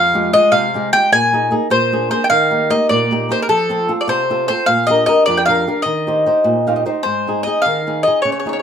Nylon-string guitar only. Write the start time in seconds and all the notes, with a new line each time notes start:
Already playing: F2
0.14 G#3 F4 G4
0.33 G#3 F4 G4
0.52 C3
0.74 G#3 F4 G4
0.93 G#3 F4 G4
1.12 A#2
1.33 A#3 D#4 G#4
1.51 A#3 D#4 G#4
1.70 A#2
1.92 A#3 D4 G#4
2.10 A#3 D4 G#4
2.30 D#3
2.51 A#3 D#4 G4
2.70 A#3 D#4 G4
2.90 A#2
3.11 A#3 D#4 G4
3.29 A#3 D#4 G4
3.49 F3
3.70 C4 F4 A4
3.89 C4 F4 A4
4.08 C3
4.30 C4 F4 A4
4.49 C4 F4 A4
4.67 A#2
4.89 D4 G4 A#4
5.08 D4 G4 A#4
5.27 F2
5.48 D4 G4 A#4
5.67 D4 G4 A#4
5.86 D#3
6.07 D#4 G4 C5
6.26 D#4 G4 C5
6.44 A#2
6.67 D#4 G4 C5 F5
6.76 D#5
6.86 D#4 G4 C5
7.05 G#2
7.27 C4 D#4 G#4
7.47 C4 D#4 G#4
7.66 D#3
7.87 C4 D#4 G#4
8.07 C4 D#4 G#4
8.25 C#3
8.46 C#4 D#4 G#4